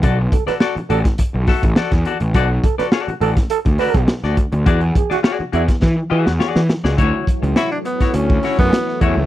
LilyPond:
<<
  \new Staff \with { instrumentName = "Clean electric guitar" } { \time 4/4 \key b \dorian \tempo 4 = 104 <fis' a' d''>16 r8 <fis' a' d''>16 <fis' a' d''>16 r16 <fis' a' d''>16 r8. <fis' a' e''>16 r16 <fis' a' d''>16 r16 <fis' a' d''>16 r16 | <fis' a' d''>16 r8 <fis' a' d''>16 <fis' a' d''>16 r16 <fis' a' d''>16 r8. <fis' a' d''>16 r8 <fis' a' d''>16 r8 | <fis' gis' d''>16 r8 <fis' gis' d''>16 <fis' gis' d''>16 r16 <fis' gis' d''>16 r8. <fis' gis' e''>16 r16 <fis' gis' d''>16 r8 <fis' gis' d''>16 | <e' fis' cis''>8 r8 <e' fis' cis''>16 r8 <e' fis' cis''>16 r8 <e' fis' cis''>16 r8. <e' fis' cis''>16 r16 | }
  \new Staff \with { instrumentName = "Trombone" } { \time 4/4 \key b \dorian r8 a'16 b'16 r8 a'16 r2 r16 | r8 a'16 b'16 r8 a'16 r16 a'16 r16 b'8 r4 | r8 gis'16 fis'16 r8 e'16 r2 r16 | r1 | }
  \new Staff \with { instrumentName = "Tenor saxophone" } { \time 4/4 \key b \dorian r1 | r1 | r1 | r4 e'16 d'16 b8 cis'8. b8. a8 | }
  \new Staff \with { instrumentName = "String machine" } { \clef bass \time 4/4 \key b \dorian r1 | r1 | r1 | <e fis a cis''>1 | }
  \new Staff \with { instrumentName = "Picked electric bass" } { \clef bass \time 4/4 \key b \dorian b,,8 r4 a,,16 r8 b,,16 r16 a,,16 r16 e,16 r16 a,,16 | b,,8 r4 a,,16 r8 d,16 r16 b,,16 r16 d,16 r16 d,16 | e,8 r4 e,16 r16 e16 r16 e16 e,16 r16 e16 r16 cis,16 | d,16 r8 cis,16 r4 d,8 r16 fis,16 r8 e,16 cis,16 | }
  \new DrumStaff \with { instrumentName = "Drums" } \drummode { \time 4/4 <hh bd>8 <hh bd>16 <hh sn>16 sn16 hh16 hh16 <hh bd sn>16 <hh bd>8 <hho bd sn>16 <hh bd>16 sn16 <hh bd sn>16 hh16 hh16 | <hh bd>8 <hh bd>16 <hh sn>16 sn16 hh16 hh16 <hh bd sn>16 hh16 <hh bd>16 <hho sn>16 <hh bd>16 sn16 <hh sn>16 <hh bd>16 hh16 | <hh bd>16 hh16 <hh bd>16 <hh sn>16 sn8 hh16 <hh bd sn>16 <bd sn>8. sn16 sn16 sn16 sn16 sn16 | <hh bd>8 <hh bd>16 hh16 <hh sn>8 hh16 <hh bd sn>16 hh16 bd16 <hho sn>16 bd16 <hh sn>16 sn16 <hh bd>8 | }
>>